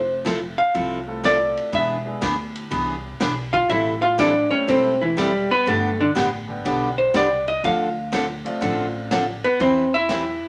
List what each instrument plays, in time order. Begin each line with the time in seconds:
Already playing: upright bass F1, hollow-body jazz guitar C5
0.25 steel-string acoustic guitar F3 C4 E4 A4, kick, snare, hi-hat pedal, ride
0.58 hollow-body jazz guitar F5
0.74 upright bass C2, steel-string acoustic guitar F3 C4 E4 A4, kick, ride
1.07 upright piano A3 C4 E4 F4 A4
1.24 steel-string acoustic guitar F3 C4 E4 A4, hollow-body jazz guitar D5, kick, snare, hi-hat pedal, ride
1.57 ride
1.72 upright bass E1, steel-string acoustic guitar E3 B3 D4 G#4, hollow-body jazz guitar E5, kick, ride
2.05 upright piano G#3 B3 D4 E4 G#4
2.21 upright bass D2, steel-string acoustic guitar E3 B3 D4 G#4, kick, snare, hi-hat pedal, ride
2.55 ride
2.71 upright bass C2, steel-string acoustic guitar E3 B3 D4 G#4, kick, ride
3.20 upright bass B1, steel-string acoustic guitar E3 B3 D4 G#4, kick, snare, hi-hat pedal, ride
3.53 hollow-body jazz guitar F4 F5, kick, ride
3.69 upright bass A1, steel-string acoustic guitar E3 G3 C4 E4 A4, hollow-body jazz guitar E4 E5, kick, ride
4.02 hollow-body jazz guitar F4 F5
4.18 steel-string acoustic guitar E3 G3 C4 E4 A4, hollow-body jazz guitar D4 D5, kick, snare, hi-hat pedal, ride
4.51 upright piano G3 A3 C4 E4 G4, hollow-body jazz guitar C#4 C#5
4.67 upright bass E1, steel-string acoustic guitar E3 G3 C4 E4 A4, hollow-body jazz guitar C4 C5, kick, ride
5.01 hollow-body jazz guitar E3 E4
5.17 steel-string acoustic guitar E3 G3 C4 E4 A4, hollow-body jazz guitar G3 G4, kick, snare, hi-hat pedal, ride
5.51 hollow-body jazz guitar B3 B4
5.66 upright bass G1, steel-string acoustic guitar D3 G3 B3 D4 G4, hollow-body jazz guitar A3 A4, kick, ride
6.00 hollow-body jazz guitar D3 D4
6.15 upright bass A1, steel-string acoustic guitar D3 G3 B3 D4 G4, kick, snare, hi-hat pedal, ride
6.48 upright piano D3 G3 B3 D4 G4
6.65 upright bass B1, steel-string acoustic guitar D3 G3 B3 D4 G4, kick, ride
6.98 hollow-body jazz guitar C5
7.14 upright bass C2, steel-string acoustic guitar D3 G3 B3 D4 G4, hollow-body jazz guitar D5, kick, snare, hi-hat pedal, ride
7.48 hollow-body jazz guitar D#5, ride
7.64 upright bass D2, steel-string acoustic guitar D3 F3 C4 D4 A4, hollow-body jazz guitar F5, kick, ride
8.12 steel-string acoustic guitar D3 F3 C4 D4 A4, kick, snare, hi-hat pedal, ride
8.45 upright piano F3 A3 C4 D4 F4, ride
8.61 upright bass A1, steel-string acoustic guitar D3 F3 C4 D4 A4, kick, ride
9.11 steel-string acoustic guitar D3 F3 C4 D4 A4, kick, snare, hi-hat pedal, ride
9.44 hollow-body jazz guitar B3 B4, ride
9.60 upright bass E2, steel-string acoustic guitar E3 G3 C4 E4 B4, hollow-body jazz guitar C4 C5, kick, ride
9.94 hollow-body jazz guitar E4 E5
10.09 steel-string acoustic guitar E3 G3 C4 E4 B4, kick, snare, hi-hat pedal, ride